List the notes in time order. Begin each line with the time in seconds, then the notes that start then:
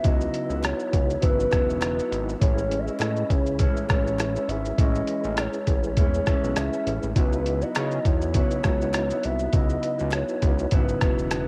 Already playing: D#4 E4 F#4 B4
0.02 C#2 C#3 F#3 B3 E4 D#5, kick, closed hi-hat, shaker
0.21 shaker
0.34 closed hi-hat, shaker
0.49 C#2 F#3 B3 E4, shaker
0.63 C#5, cross-stick, clap, closed hi-hat, shaker
0.80 shaker
0.93 C#2, kick, closed hi-hat, shaker
1.10 shaker
1.21 G#1 C#3 F#3 B3 E4 B4, kick, closed hi-hat, shaker
1.40 shaker
1.51 E1 C#3 F#3 B3 E4, kick, cross-stick, clap, closed hi-hat, shaker
1.70 shaker
1.81 B4, cross-stick, clap, closed hi-hat, shaker
1.98 F#3 B3 E4, shaker
2.12 G#1, closed hi-hat, shaker
2.29 shaker
2.38 A1 E3 G#3 C#4 E4 G#4 C#5, kick, closed hi-hat, shaker
2.43 B4
2.58 shaker
2.71 closed hi-hat, shaker
2.79 E5
2.86 G#3 C#4 E4 D#5, shaker
2.99 A2, cross-stick, clap, closed hi-hat, shaker
3.16 shaker
3.29 C#2 C#5, kick, closed hi-hat, shaker
3.46 shaker
3.58 A2 E3 G#3 C#4 E4 C#5, kick, closed hi-hat, shaker
3.76 shaker
3.88 A1 A2 E3 G#3 C#4 E4, kick, cross-stick, clap, closed hi-hat, shaker
4.07 shaker
4.19 cross-stick, clap, closed hi-hat, shaker
4.34 G#3 C#4 E4, shaker
4.48 G#1 E5, closed hi-hat, shaker
4.65 shaker
4.77 A1 E3 G#3 C#4 E4 D#5, kick, closed hi-hat, shaker
4.95 shaker
5.07 closed hi-hat, shaker
5.23 A1 G#3 C#4 E4, shaker
5.37 C#5, cross-stick, clap, closed hi-hat, shaker
5.53 shaker
5.67 A1, kick, closed hi-hat, shaker
5.84 shaker
5.97 E2 A2 E3 G#3 C#4 E4 C#5, kick, closed hi-hat, shaker
6.14 shaker
6.27 B1 A2 E3 G#3 C#4 E4, kick, cross-stick, clap, closed hi-hat, shaker
6.44 B1, shaker
6.56 C#2 E5, cross-stick, clap, closed hi-hat, shaker
6.72 G#3 C#4 E4, shaker
6.87 A1, closed hi-hat, shaker
7.03 A1, shaker
7.13 C#2 C#3 F#3 B3 D#4 E4 F#4, kick, closed hi-hat, shaker
7.17 E4 B4
7.33 shaker
7.46 closed hi-hat, shaker
7.61 F#3 B3 E4 D#5, shaker
7.75 C#3, cross-stick, clap, closed hi-hat, shaker
7.91 shaker
8.05 E2 C#5, kick, closed hi-hat, shaker
8.22 shaker
8.33 C#3 F#3 B3 E4 C#5, kick, closed hi-hat, shaker
8.51 shaker
8.63 C#2 C#3 F#3 B3 E4, kick, cross-stick, clap, closed hi-hat, shaker
8.81 shaker
8.93 cross-stick, clap, closed hi-hat, shaker
9.09 F#3 B3 E4, shaker
9.23 C2 E5, closed hi-hat, shaker
9.39 shaker
9.53 C#2 C#3 F#3 B3 E4 D#5, kick, closed hi-hat, shaker
9.69 shaker
9.83 closed hi-hat, shaker
9.98 C#2 F#3 B3 E4, shaker
10.11 C#5, cross-stick, clap, closed hi-hat, shaker
10.28 shaker
10.42 C#2, kick, closed hi-hat, shaker
10.59 shaker
10.71 G#1 C#3 F#3 B3 E4 B4, kick, closed hi-hat, shaker
10.88 shaker
11.01 E1 C#3 F#3 B3 E4, kick, cross-stick, clap, closed hi-hat, shaker
11.18 shaker
11.31 B4, cross-stick, clap, closed hi-hat, shaker